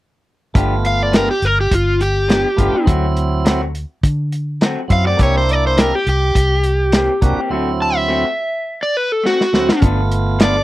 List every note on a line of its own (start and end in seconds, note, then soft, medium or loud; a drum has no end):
0.54 1.28 G1 medium
0.54 0.73 F3 medium
0.54 1.29 A3 medium
0.54 1.30 B3 medium
0.54 0.73 B3 medium
0.54 0.73 D4 medium
0.54 1.30 F4 medium
0.54 0.74 G4 medium
0.54 kick medium
0.54 closed hi-hat medium
0.85 1.03 F5 medium
0.85 closed hi-hat medium
1.03 1.15 D5 medium
1.12 1.30 F3 medium
1.12 1.31 B3 medium
1.12 1.31 D4 medium
1.12 1.32 G4 medium
1.12 1.29 A#4 medium
1.12 snare loud
1.12 closed hi-hat medium
1.31 1.45 G4 medium
1.42 1.66 G1 medium
1.42 1.58 A#4 medium
1.42 closed hi-hat medium
1.61 1.73 G4 medium
1.71 2.44 G1 medium
1.71 2.01 F4 medium
1.71 kick medium
1.71 closed hi-hat medium
2.01 2.85 G4 medium
2.01 closed hi-hat medium
2.28 2.46 F3 medium
2.28 2.47 B3 medium
2.28 2.47 D4 medium
2.28 2.48 G4 medium
2.28 snare medium
2.28 closed hi-hat medium
2.57 2.70 G1 medium
2.57 2.73 F3 medium
2.57 2.76 A3 medium
2.57 2.76 B3 medium
2.57 2.73 B3 soft
2.57 2.73 D4 medium
2.57 2.77 F4 medium
2.57 2.71 G4 medium
2.57 kick medium
2.57 closed hi-hat medium
2.72 2.88 B3 soft
2.72 2.88 D4 medium
2.72 2.87 G4 soft
2.72 muted fingered electric bass stroke soft
2.86 3.84 D2 medium
2.86 3.61 F#3 medium
2.86 3.05 F#3 medium
2.86 3.05 A3 medium
2.86 3.61 C4 medium
2.86 3.06 C4 medium
2.86 3.62 E4 medium
2.86 3.06 F#4 medium
2.86 kick medium
2.86 closed hi-hat medium
3.17 closed hi-hat medium
3.45 3.63 F#3 medium
3.45 3.63 A3 medium
3.45 3.64 C4 medium
3.45 3.64 F#4 medium
3.45 snare loud
3.45 closed hi-hat medium
3.75 closed hi-hat soft
4.03 4.76 D3 medium
4.03 kick medium
4.03 closed hi-hat medium
4.32 closed hi-hat medium
4.61 4.79 F#3 medium
4.61 4.79 A3 medium
4.61 4.79 C4 medium
4.61 4.80 F#4 medium
4.61 snare medium
4.61 closed hi-hat medium
4.88 5.14 F#2 medium
4.88 5.08 F#3 medium
4.88 5.08 C4 medium
4.88 5.09 E4 medium
4.88 kick medium
4.88 closed hi-hat medium
4.92 5.06 F5 medium
5.04 5.19 A3 soft
5.04 5.19 C4 soft
5.04 5.19 F#4 soft
5.04 5.19 D5 medium
5.17 5.92 C2 medium
5.17 5.36 E3 medium
5.17 5.92 A#3 medium
5.17 5.37 A#3 medium
5.17 5.37 C4 medium
5.17 5.93 D4 medium
5.17 5.93 E4 medium
5.17 5.37 G4 medium
5.17 kick medium
5.17 closed hi-hat medium
5.23 5.35 C#5 medium
5.37 5.49 C5 medium
5.49 5.65 D5 medium
5.49 closed hi-hat medium
5.67 5.80 C5 medium
5.77 5.94 E3 medium
5.77 5.95 A#3 medium
5.77 5.95 C4 medium
5.77 5.95 G4 medium
5.77 5.95 A#4 medium
5.77 snare loud
5.77 closed hi-hat medium
5.95 6.07 G4 medium
6.07 6.30 C2 medium
6.07 7.20 G4 medium
6.07 closed hi-hat medium
6.35 7.08 C2 medium
6.35 kick medium
6.35 closed hi-hat medium
6.64 closed hi-hat medium
6.92 7.10 E3 medium
6.92 7.11 A#3 medium
6.92 7.11 C4 medium
6.92 7.11 G4 medium
6.92 snare medium
6.92 closed hi-hat medium
7.21 7.34 C2 medium
7.21 7.36 E3 medium
7.21 7.40 A#3 medium
7.21 7.37 A#3 medium
7.21 7.37 C4 medium
7.21 7.40 D4 medium
7.21 7.41 F#4 medium
7.21 7.35 G4 medium
7.21 kick medium
7.21 closed hi-hat medium
7.36 7.50 A#3 soft
7.36 7.51 C4 soft
7.36 7.50 G4 medium
7.50 8.24 D2 medium
7.50 8.25 F#3 medium
7.50 7.68 A3 medium
7.50 8.25 C4 medium
7.50 7.69 C4 medium
7.50 8.25 E4 medium
7.50 7.69 F#4 medium
7.82 7.96 A5 medium
7.96 8.79 E5 medium
8.08 8.26 A3 medium
8.08 8.27 C4 medium
8.08 8.27 F#4 medium
8.83 8.97 D5 medium
8.97 9.12 B4 medium
9.12 9.25 A4 medium
9.23 9.41 A3 medium
9.23 9.42 C4 medium
9.23 9.42 F#4 medium
9.23 9.81 F#4 medium
9.23 snare soft
9.41 snare medium
9.53 9.72 D2 medium
9.53 9.72 F#3 medium
9.53 9.68 A3 soft
9.53 9.73 C4 medium
9.53 9.69 C4 medium
9.53 9.73 E4 medium
9.53 9.66 F#4 medium
9.53 snare medium
9.67 9.82 C4 soft
9.67 9.82 F#4 soft
9.67 snare medium
9.81 10.64 G1 medium
9.81 9.99 F3 medium
9.81 10.56 A3 medium
9.81 10.56 B3 medium
9.81 10.00 B3 medium
9.81 10.00 D4 medium
9.81 10.57 F4 medium
9.81 10.00 A4 medium
9.81 kick loud
9.81 closed hi-hat medium
10.12 closed hi-hat medium
10.39 10.57 F3 medium
10.39 10.57 B3 medium
10.39 10.58 D4 medium
10.39 10.58 A4 medium
10.39 snare loud
10.39 closed hi-hat medium
10.43 10.64 D5 medium